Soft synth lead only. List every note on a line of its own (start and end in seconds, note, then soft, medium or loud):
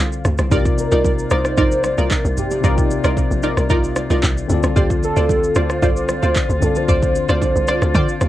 0.00 0.26 F5 loud
0.53 0.65 G4 medium
0.80 1.34 A#4 loud
1.33 1.58 C5 loud
1.59 2.01 C5 loud
2.00 2.38 A#4 loud
2.38 2.63 G4 medium
2.65 3.14 G4 medium
4.78 4.89 G4 medium
5.04 5.58 A4 loud
5.57 6.10 C5 loud
6.10 6.64 C5 loud
6.63 6.78 A4 loud
6.77 8.29 C5 loud